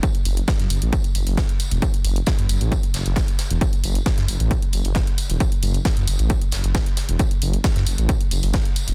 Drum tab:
HH |xxoxxxoxxxoxxxox|xxoxxxoxxxoxxxox|xxoxxxoxxxoxxxox|xxoxxxoxxxoxxxox|
TB |x-x-x-x-x-x-x-x-|x-x-x-x-x-x-x-x-|x-x-x-x-x-x-x-x-|x-x-x-x-x-x-x-x-|
SD |----oo------o---|----o-----o-o-o-|----oo------o---|----o-----o-o-o-|
BD |o---o---o---o---|o---o---o---o---|o---o---o---o---|o---o---o---o---|

HH |xxoxxxoxxxoxxxox|
TB |x-x-x-x-x-x-x-x-|
SD |----oo------o---|
BD |o---o---o---o---|